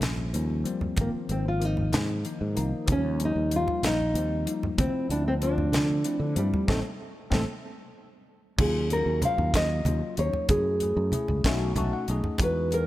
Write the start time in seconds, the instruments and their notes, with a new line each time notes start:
Already playing: tine electric piano A#2 F3 G3 C#4
0.01 fretless electric bass A#1, snare, closed hi-hat, high conga
0.17 low conga
0.33 fretless electric bass D#2, tine electric piano F3 G3 A#3 C#4, closed hi-hat, low conga
0.50 low conga
0.64 tine electric piano F3 G3 A#3 C4, closed hi-hat, low conga
0.81 low conga
0.97 fretless electric bass G#1, tine electric piano D#3 F3 A#3 C4, kick, closed hi-hat, high conga
1.01 nylon-string guitar A#3
1.14 muted fretless electric bass stroke
1.29 fretless electric bass G#1, tine electric piano D#3 F3 A#3 D#4, nylon-string guitar C4, closed hi-hat
1.48 nylon-string guitar F4
1.60 tine electric piano D#3 F3 A#3 C4, closed hi-hat
1.65 nylon-string guitar D#4
1.77 low conga
1.93 fretless electric bass G#2, snare, closed hi-hat, high conga
2.09 low conga
2.24 tine electric piano D#3 F3 A#3 D#4, closed hi-hat
2.41 fretless electric bass G#2
2.55 fretless electric bass C2, tine electric piano D#3 F3 A#3 D#4, closed hi-hat
2.73 muted fretless electric bass stroke
2.86 fretless electric bass D#2, tine electric piano F3 G3 A#3 C#4, kick, closed hi-hat, high conga
2.92 nylon-string guitar C#4
3.19 tine electric piano F3 G3 A#3 C#4, closed hi-hat
3.25 nylon-string guitar D#4
3.36 fretless electric bass D#2
3.51 tine electric piano F3 G3 A#3 D#4, closed hi-hat
3.56 nylon-string guitar F4
3.68 low conga
3.83 fretless electric bass A#1, nylon-string guitar D#4, snare, closed hi-hat, high conga
4.01 low conga
4.14 fretless electric bass D#2, tine electric piano F3 G3 A#3 C4, closed hi-hat
4.46 tine electric piano F3 G3 A#3 D#4, closed hi-hat
4.63 low conga
4.78 fretless electric bass D2, tine electric piano F3 A3 C4 E4, nylon-string guitar C4, kick, closed hi-hat, high conga
4.94 muted fretless electric bass stroke
5.09 fretless electric bass D2, tine electric piano F3 A3 C4 E4, nylon-string guitar D4, closed hi-hat
5.28 nylon-string guitar C4
5.42 tine electric piano F3 A3 C4 F4, nylon-string guitar D4, closed hi-hat
5.58 low conga
5.72 fretless electric bass D3, snare, closed hi-hat, high conga
5.90 low conga
6.04 tine electric piano F3 A3 C4 E4, closed hi-hat
6.20 fretless electric bass D3
6.35 fretless electric bass G2, tine electric piano F3 A3 C4 E4, nylon-string guitar G3, closed hi-hat
6.52 muted fretless electric bass stroke, low conga
6.68 fretless electric bass A1, tine electric piano G3 A3 C4, nylon-string guitar A3 C4 D#4, kick, snare, high conga
7.30 fretless electric bass A1, tine electric piano G3 A3 C4, nylon-string guitar A3 C4 D#4, kick, snare, high conga
8.58 fretless electric bass D#2, tine electric piano F#3 A#3 C#4 F4, nylon-string guitar G#4, kick, crash, high conga
8.90 tine electric piano F#3 A#3 C#4 F#4, nylon-string guitar A#4, closed hi-hat, low conga
9.06 fretless electric bass D#2
9.21 tine electric piano F#3 A#3 C#4 F4, nylon-string guitar F5, closed hi-hat, high conga, low conga
9.38 fretless electric bass D#2, low conga
9.54 nylon-string guitar D#5, kick, snare, closed hi-hat
9.70 low conga
9.85 fretless electric bass D#2, tine electric piano F#3 A#3 C#4 F4, closed hi-hat, high conga
10.17 fretless electric bass D#2, tine electric piano F#3 A#3 C#4 D#4, nylon-string guitar C#5, closed hi-hat, low conga
10.33 muted fretless electric bass stroke, low conga
10.49 fretless electric bass F#2, tine electric piano A3 C#4 E4 G#4, nylon-string guitar G#4, kick, closed hi-hat, high conga
10.80 tine electric piano A3 C#4 E4 G#4, closed hi-hat, low conga
10.97 fretless electric bass F#2
11.12 tine electric piano A3 C#4 E4 G#4, closed hi-hat, high conga, low conga
11.28 fretless electric bass C#2, low conga
11.44 fretless electric bass B1, tine electric piano A3 C#4 D#4 F#4, kick, snare, closed hi-hat
11.60 low conga
11.76 fretless electric bass B1, tine electric piano A3 C#4 D#4 F#4 A5, closed hi-hat, high conga
11.93 tine electric piano F#5
12.08 fretless electric bass B1, tine electric piano A3 C#4 D#4 G#4 D#5, closed hi-hat, low conga
12.24 muted fretless electric bass stroke, low conga
12.38 fretless electric bass E2, tine electric piano G#3 B3 D#4 F#4, kick, closed hi-hat, high conga
12.43 nylon-string guitar B4
12.71 tine electric piano G#3 B3 D#4 G#4, nylon-string guitar A#4, closed hi-hat, low conga